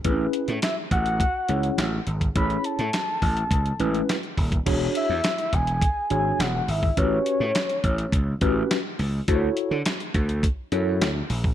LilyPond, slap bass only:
\new Staff \with { instrumentName = "Slap bass" } { \clef bass \time 4/4 \key a \major \tempo 4 = 104 a,,8 r16 a,16 r8 a,,8. r16 cis,8 a,,8 gis,,8 | a,,8 r16 a,16 r8 a,,8 cis,8 a,,8 r8 dis,,8 | e,,8 r16 e,16 r8 e,,8. r16 gis,,8 e,,8 gis,,8 | a,,8 r16 a,16 r8 a,,8 cis,8 a,,8 r8 cis,8 |
d,8 r16 d16 r8 d,8. r16 fis,8 d,8 ais,,8 | }